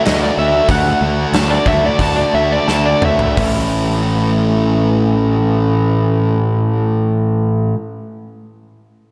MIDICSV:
0, 0, Header, 1, 5, 480
1, 0, Start_track
1, 0, Key_signature, 3, "major"
1, 0, Tempo, 638978
1, 518, Time_signature, 4, 2, 24, 8
1, 1003, Tempo, 671892
1, 1963, Tempo, 715137
1, 6284, End_track
2, 0, Start_track
2, 0, Title_t, "Electric slide guitar"
2, 0, Program_c, 0, 29
2, 40, Note_on_c, 0, 75, 88
2, 156, Note_off_c, 0, 75, 0
2, 169, Note_on_c, 0, 74, 86
2, 280, Note_off_c, 0, 74, 0
2, 292, Note_on_c, 0, 76, 87
2, 517, Note_off_c, 0, 76, 0
2, 533, Note_on_c, 0, 78, 80
2, 760, Note_off_c, 0, 78, 0
2, 1010, Note_on_c, 0, 81, 101
2, 1121, Note_off_c, 0, 81, 0
2, 1122, Note_on_c, 0, 74, 92
2, 1236, Note_off_c, 0, 74, 0
2, 1245, Note_on_c, 0, 76, 89
2, 1357, Note_off_c, 0, 76, 0
2, 1378, Note_on_c, 0, 74, 86
2, 1484, Note_off_c, 0, 74, 0
2, 1485, Note_on_c, 0, 81, 89
2, 1592, Note_on_c, 0, 74, 71
2, 1598, Note_off_c, 0, 81, 0
2, 1712, Note_off_c, 0, 74, 0
2, 1726, Note_on_c, 0, 76, 85
2, 1841, Note_off_c, 0, 76, 0
2, 1851, Note_on_c, 0, 74, 78
2, 1961, Note_on_c, 0, 81, 97
2, 1965, Note_off_c, 0, 74, 0
2, 2076, Note_off_c, 0, 81, 0
2, 2083, Note_on_c, 0, 74, 77
2, 2196, Note_off_c, 0, 74, 0
2, 2211, Note_on_c, 0, 76, 88
2, 2436, Note_off_c, 0, 76, 0
2, 6284, End_track
3, 0, Start_track
3, 0, Title_t, "Distorted electric guitar"
3, 0, Program_c, 1, 30
3, 38, Note_on_c, 1, 50, 93
3, 44, Note_on_c, 1, 57, 92
3, 49, Note_on_c, 1, 62, 97
3, 54, Note_on_c, 1, 66, 92
3, 277, Note_off_c, 1, 50, 0
3, 284, Note_off_c, 1, 57, 0
3, 286, Note_off_c, 1, 62, 0
3, 286, Note_on_c, 1, 50, 66
3, 287, Note_on_c, 1, 57, 81
3, 291, Note_off_c, 1, 66, 0
3, 295, Note_on_c, 1, 62, 83
3, 300, Note_on_c, 1, 66, 82
3, 510, Note_off_c, 1, 50, 0
3, 514, Note_off_c, 1, 57, 0
3, 519, Note_off_c, 1, 62, 0
3, 519, Note_on_c, 1, 50, 80
3, 523, Note_on_c, 1, 57, 77
3, 528, Note_off_c, 1, 66, 0
3, 528, Note_on_c, 1, 62, 85
3, 537, Note_on_c, 1, 66, 90
3, 752, Note_off_c, 1, 50, 0
3, 758, Note_off_c, 1, 57, 0
3, 761, Note_on_c, 1, 50, 74
3, 764, Note_off_c, 1, 62, 0
3, 767, Note_on_c, 1, 57, 78
3, 769, Note_off_c, 1, 66, 0
3, 773, Note_on_c, 1, 62, 81
3, 778, Note_on_c, 1, 66, 91
3, 997, Note_off_c, 1, 50, 0
3, 1000, Note_off_c, 1, 57, 0
3, 1006, Note_on_c, 1, 50, 86
3, 1009, Note_off_c, 1, 62, 0
3, 1009, Note_on_c, 1, 57, 79
3, 1012, Note_off_c, 1, 66, 0
3, 1018, Note_on_c, 1, 62, 82
3, 1020, Note_on_c, 1, 66, 92
3, 1231, Note_off_c, 1, 50, 0
3, 1237, Note_off_c, 1, 57, 0
3, 1240, Note_off_c, 1, 62, 0
3, 1240, Note_on_c, 1, 50, 74
3, 1246, Note_on_c, 1, 57, 85
3, 1247, Note_off_c, 1, 66, 0
3, 1248, Note_on_c, 1, 62, 76
3, 1255, Note_on_c, 1, 66, 88
3, 1470, Note_off_c, 1, 50, 0
3, 1478, Note_off_c, 1, 57, 0
3, 1479, Note_off_c, 1, 62, 0
3, 1479, Note_on_c, 1, 50, 64
3, 1486, Note_off_c, 1, 66, 0
3, 1486, Note_on_c, 1, 57, 68
3, 1487, Note_on_c, 1, 62, 90
3, 1494, Note_on_c, 1, 66, 93
3, 1713, Note_off_c, 1, 50, 0
3, 1715, Note_off_c, 1, 57, 0
3, 1722, Note_on_c, 1, 50, 75
3, 1723, Note_off_c, 1, 62, 0
3, 1723, Note_on_c, 1, 57, 83
3, 1729, Note_off_c, 1, 66, 0
3, 1731, Note_on_c, 1, 62, 70
3, 1738, Note_on_c, 1, 66, 88
3, 1952, Note_off_c, 1, 57, 0
3, 1953, Note_off_c, 1, 50, 0
3, 1957, Note_off_c, 1, 62, 0
3, 1961, Note_on_c, 1, 50, 85
3, 1961, Note_on_c, 1, 57, 85
3, 1963, Note_off_c, 1, 66, 0
3, 1966, Note_on_c, 1, 62, 91
3, 1971, Note_on_c, 1, 66, 90
3, 2182, Note_off_c, 1, 50, 0
3, 2191, Note_off_c, 1, 57, 0
3, 2191, Note_on_c, 1, 50, 70
3, 2192, Note_off_c, 1, 62, 0
3, 2196, Note_off_c, 1, 66, 0
3, 2199, Note_on_c, 1, 57, 75
3, 2200, Note_on_c, 1, 62, 73
3, 2204, Note_on_c, 1, 66, 76
3, 2418, Note_off_c, 1, 50, 0
3, 2422, Note_off_c, 1, 57, 0
3, 2423, Note_off_c, 1, 62, 0
3, 2424, Note_on_c, 1, 45, 60
3, 2425, Note_off_c, 1, 66, 0
3, 2433, Note_on_c, 1, 52, 79
3, 2437, Note_on_c, 1, 57, 87
3, 2443, Note_on_c, 1, 61, 73
3, 2451, Note_on_c, 1, 64, 87
3, 5361, Note_off_c, 1, 45, 0
3, 5365, Note_off_c, 1, 52, 0
3, 5367, Note_off_c, 1, 57, 0
3, 5370, Note_off_c, 1, 61, 0
3, 5374, Note_off_c, 1, 64, 0
3, 6284, End_track
4, 0, Start_track
4, 0, Title_t, "Picked electric bass"
4, 0, Program_c, 2, 34
4, 55, Note_on_c, 2, 38, 79
4, 219, Note_off_c, 2, 38, 0
4, 282, Note_on_c, 2, 38, 85
4, 451, Note_off_c, 2, 38, 0
4, 514, Note_on_c, 2, 38, 83
4, 687, Note_off_c, 2, 38, 0
4, 759, Note_on_c, 2, 38, 93
4, 933, Note_off_c, 2, 38, 0
4, 996, Note_on_c, 2, 38, 93
4, 1166, Note_off_c, 2, 38, 0
4, 1237, Note_on_c, 2, 38, 84
4, 1407, Note_off_c, 2, 38, 0
4, 1471, Note_on_c, 2, 38, 74
4, 1645, Note_off_c, 2, 38, 0
4, 1719, Note_on_c, 2, 38, 79
4, 1893, Note_off_c, 2, 38, 0
4, 1966, Note_on_c, 2, 38, 74
4, 2131, Note_off_c, 2, 38, 0
4, 2192, Note_on_c, 2, 38, 88
4, 2364, Note_off_c, 2, 38, 0
4, 2430, Note_on_c, 2, 33, 74
4, 5337, Note_off_c, 2, 33, 0
4, 6284, End_track
5, 0, Start_track
5, 0, Title_t, "Drums"
5, 42, Note_on_c, 9, 46, 51
5, 49, Note_on_c, 9, 38, 113
5, 117, Note_off_c, 9, 46, 0
5, 125, Note_off_c, 9, 38, 0
5, 516, Note_on_c, 9, 36, 99
5, 522, Note_on_c, 9, 46, 44
5, 591, Note_off_c, 9, 36, 0
5, 597, Note_off_c, 9, 46, 0
5, 1003, Note_on_c, 9, 46, 46
5, 1010, Note_on_c, 9, 38, 107
5, 1075, Note_off_c, 9, 46, 0
5, 1082, Note_off_c, 9, 38, 0
5, 1235, Note_on_c, 9, 36, 82
5, 1306, Note_off_c, 9, 36, 0
5, 1471, Note_on_c, 9, 36, 65
5, 1472, Note_on_c, 9, 46, 41
5, 1543, Note_off_c, 9, 36, 0
5, 1544, Note_off_c, 9, 46, 0
5, 1965, Note_on_c, 9, 38, 53
5, 2032, Note_off_c, 9, 38, 0
5, 2192, Note_on_c, 9, 45, 83
5, 2259, Note_off_c, 9, 45, 0
5, 2307, Note_on_c, 9, 43, 80
5, 2374, Note_off_c, 9, 43, 0
5, 2429, Note_on_c, 9, 36, 83
5, 2429, Note_on_c, 9, 43, 81
5, 2429, Note_on_c, 9, 46, 79
5, 2496, Note_off_c, 9, 36, 0
5, 2496, Note_off_c, 9, 43, 0
5, 2496, Note_off_c, 9, 46, 0
5, 6284, End_track
0, 0, End_of_file